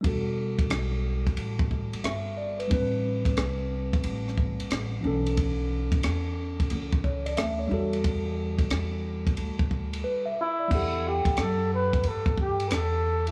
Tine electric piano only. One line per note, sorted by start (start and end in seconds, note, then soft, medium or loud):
0.01 2.65 G3 medium
0.01 2.66 D4 medium
0.05 2.67 F#4 medium
0.05 2.68 A4 medium
2.04 2.36 E5 medium
2.37 2.58 D5 medium
2.59 2.72 B4 medium
2.68 4.99 G3 medium
2.68 5.00 C4 medium
2.72 5.01 D4 medium
2.72 5.02 B4 medium
5.01 7.65 E3 medium
5.01 7.66 C#4 medium
5.05 7.67 D4 medium
5.05 7.68 A4 medium
7.04 7.25 C#5 medium
7.26 7.37 D5 medium
7.37 7.58 E5 medium
7.59 7.91 C#5 soft
7.68 10.32 G3 medium
7.68 10.33 D4 medium
7.68 10.34 F#4 medium
7.73 10.35 A4 medium
10.04 10.25 B4 medium
10.26 10.58 E5 medium
10.60 10.91 D5 medium
10.68 10.78 F#3 soft
10.68 13.31 D4 medium
10.72 13.31 G4 medium
10.72 13.31 A4 medium
10.72 13.31 F#5 medium